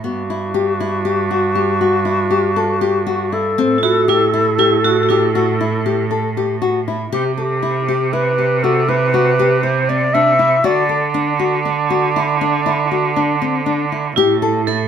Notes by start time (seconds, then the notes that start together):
0.04 G2 B3 F#4
0.30 E4
0.54 G4
0.80 E4
1.05 G4
1.31 F#4
1.55 G4
1.81 F#4
2.05 E4
2.31 G4
2.56 A4
2.81 G4
3.06 F#4
3.32 E4 A4
3.58 A2 C4
3.78 F4
3.83 E4 F#4
4.08 E4 G4
4.34 E4
4.58 E4 G4
4.84 F#4
5.03 F#4
5.09 E4 G4
5.35 F#4
5.61 E4
5.86 G4
6.11 A4
6.37 G4
6.62 F#4
6.88 E4
7.12 C3 G4
7.38 G4 A4
7.63 E4
7.88 G4
8.13 E4 B4
8.38 G4
8.63 F#4 A4
8.88 E4 B4
9.14 F#4
9.39 G4
9.63 E4 C5
9.89 C4 D5
10.14 D4 E5
10.39 E4
10.64 D3 F#4 D5
10.89 A4
11.14 D4
11.39 F#4
11.65 D4
11.90 F#4
12.16 E4
12.41 D4
12.66 E4
12.91 F#4
13.16 D4
13.42 C4
13.66 D4
13.92 E4
14.16 A2 E4 G4
14.42 A4
14.67 E4 A4